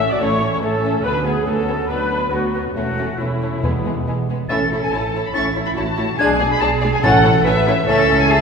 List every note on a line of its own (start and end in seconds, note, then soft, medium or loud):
0.00 0.16 A1 medium
0.00 0.16 A2 medium
0.00 0.20 A3 medium
0.00 0.20 C#4 medium
0.10 0.20 F#4 medium
0.10 0.15 D5 medium
0.10 0.21 D5 medium
0.20 0.58 A1 medium
0.20 0.58 A2 medium
0.20 0.62 A3 medium
0.20 0.29 A3 medium
0.20 0.29 C#4 medium
0.20 0.62 C#4 medium
0.20 0.50 E4 medium
0.20 0.52 C#5 medium
0.20 0.51 C#5 loud
0.41 0.49 A3 medium
0.41 0.49 C#4 medium
0.51 0.62 E4 medium
0.51 0.56 C#5 medium
0.51 0.61 C#5 medium
0.61 1.00 A1 medium
0.61 0.99 A2 medium
0.61 0.71 A3 medium
0.61 1.04 A3 medium
0.61 1.04 C#4 medium
0.61 0.71 C#4 medium
0.61 1.04 C#4 medium
0.61 1.05 A4 medium
0.61 1.04 A4 loud
0.84 0.92 A3 medium
0.84 0.92 C#4 medium
1.04 1.41 D2 medium
1.04 1.42 D2 medium
1.04 1.88 F#3 medium
1.04 1.13 B3 medium
1.04 1.89 B3 medium
1.04 1.25 D4 medium
1.04 1.26 B4 medium
1.04 1.25 B4 loud
1.24 1.46 B3 medium
1.24 1.34 B3 medium
1.24 1.45 G#4 medium
1.24 1.46 G#4 medium
1.46 1.84 D2 medium
1.46 1.85 D2 medium
1.46 1.54 B3 medium
1.46 1.88 C#4 medium
1.46 1.90 A4 medium
1.46 1.89 A4 medium
1.68 1.76 B3 medium
1.89 2.27 D2 medium
1.89 2.31 F#3 medium
1.89 1.98 B3 medium
1.89 2.31 B3 medium
1.89 2.31 D4 medium
1.89 2.31 B4 medium
1.89 2.32 B4 medium
2.11 2.19 B3 medium
2.30 2.70 D2 medium
2.30 2.75 F#3 medium
2.30 2.74 B3 medium
2.30 2.40 B3 medium
2.30 2.74 B3 medium
2.30 2.74 F#4 medium
2.55 2.63 B3 medium
2.74 3.14 E1 medium
2.74 3.13 E2 medium
2.74 3.17 A3 medium
2.74 2.85 A3 medium
2.74 3.17 C#4 medium
2.74 2.85 C#4 medium
2.74 3.19 F#4 medium
2.74 3.18 F#4 medium
2.98 3.07 A3 medium
2.98 3.06 C#4 medium
3.18 3.58 E1 medium
3.18 3.57 E2 medium
3.18 3.61 A3 medium
3.18 4.05 A3 medium
3.18 3.28 A3 soft
3.18 3.62 C#4 medium
3.18 3.28 C#4 soft
3.18 4.06 E4 medium
3.18 4.07 E4 medium
3.42 3.50 A3 soft
3.42 3.50 C#4 medium
3.62 4.01 E1 medium
3.62 4.01 E2 medium
3.62 4.24 E2 medium
3.62 4.27 G#3 medium
3.62 3.72 G#3 medium
3.62 4.27 B3 medium
3.62 3.72 B3 medium
3.85 3.94 G#3 medium
3.85 3.93 B3 soft
4.06 4.45 E1 medium
4.06 4.45 E2 medium
4.06 4.16 G#3 medium
4.06 4.16 B3 soft
4.30 4.38 G#3 medium
4.30 4.38 B3 medium
4.49 4.88 A1 medium
4.49 4.65 A3 medium
4.49 4.58 A3 medium
4.49 4.65 C#4 medium
4.49 4.58 E4 medium
4.49 4.59 E4 medium
4.49 5.31 A4 medium
4.49 4.59 C#5 medium
4.49 4.58 E5 medium
4.49 4.69 A6 medium
4.72 4.80 A3 medium
4.72 4.80 E4 medium
4.72 4.81 E4 medium
4.72 4.81 C#5 medium
4.82 4.92 G#5 medium
4.93 5.30 A1 medium
4.93 5.01 A3 medium
4.93 5.01 E4 medium
4.93 5.02 E4 medium
4.93 5.02 C#5 medium
4.93 5.25 A5 medium
5.14 5.22 A3 medium
5.14 5.22 E4 medium
5.14 5.23 E4 medium
5.14 5.23 C#5 medium
5.26 5.36 B5 medium
5.34 5.72 A1 medium
5.34 5.49 A3 medium
5.34 5.43 A3 medium
5.34 5.49 C#4 medium
5.34 5.50 C#4 medium
5.34 5.77 E4 medium
5.34 5.43 E4 medium
5.34 5.44 C#5 medium
5.34 5.43 C#6 loud
5.34 5.54 A6 medium
5.56 5.64 A3 medium
5.56 5.64 E4 medium
5.56 5.64 C#5 medium
5.66 5.70 B5 medium
5.76 6.14 A1 medium
5.76 5.85 A3 medium
5.76 5.85 E4 medium
5.76 5.86 E4 medium
5.76 6.19 F#4 medium
5.76 5.85 C#5 medium
5.76 6.18 A5 medium
5.97 6.06 A3 medium
5.97 6.05 E4 medium
5.97 6.06 E4 medium
5.97 6.05 C#5 medium
6.19 6.57 B1 medium
6.19 6.27 G#3 medium
6.19 6.35 G#3 medium
6.19 6.27 D4 medium
6.19 6.34 D4 medium
6.19 6.35 D4 medium
6.19 7.02 G#4 medium
6.19 6.27 G#4 medium
6.19 6.27 D5 medium
6.19 6.51 G#5 loud
6.19 6.39 G#6 medium
6.39 6.48 G#3 medium
6.39 6.48 D4 medium
6.39 6.48 G#4 medium
6.39 6.47 D5 medium
6.51 6.62 B5 loud
6.61 6.99 B1 medium
6.61 6.70 G#3 medium
6.61 6.70 D4 medium
6.61 6.69 G#4 medium
6.61 6.69 D5 medium
6.61 6.69 A5 loud
6.82 6.91 G#3 medium
6.82 6.91 D4 medium
6.82 6.90 G#4 medium
6.82 6.90 D5 medium
6.93 6.97 G#5 loud
7.03 7.41 A1 loud
7.03 7.63 A2 loud
7.03 7.18 A3 medium
7.03 7.12 C#4 medium
7.03 7.19 C#4 loud
7.03 7.19 C#4 medium
7.03 7.12 E4 medium
7.03 7.12 A4 medium
7.03 7.46 A4 loud
7.03 7.12 C#5 medium
7.03 7.45 F#5 loud
7.03 7.23 A6 medium
7.24 7.32 C#4 medium
7.24 7.33 E4 medium
7.24 7.33 A4 medium
7.24 7.33 C#5 medium
7.45 7.83 A1 medium
7.45 7.54 C#4 medium
7.45 7.54 E4 medium
7.45 7.55 A4 medium
7.45 7.88 B4 loud
7.45 7.55 C#5 medium
7.45 7.86 E5 loud
7.66 7.75 C#4 medium
7.66 7.74 E4 medium
7.66 7.76 A4 medium
7.66 7.76 C#5 medium
7.87 8.41 C#2 loud
7.87 8.02 A3 medium
7.87 8.02 C#4 medium
7.87 8.27 C#4 medium
7.87 8.27 E4 medium
7.87 8.29 A4 loud
7.87 8.27 A4 medium
7.87 7.96 E5 loud
7.87 8.27 E5 medium
7.87 8.27 A6 medium
8.20 8.30 G#5 loud
8.29 8.41 C#4 medium
8.29 8.41 E4 medium
8.29 8.41 G#4 loud
8.29 8.41 A4 medium
8.29 8.41 E5 medium
8.29 8.41 A5 loud
8.29 8.41 A6 medium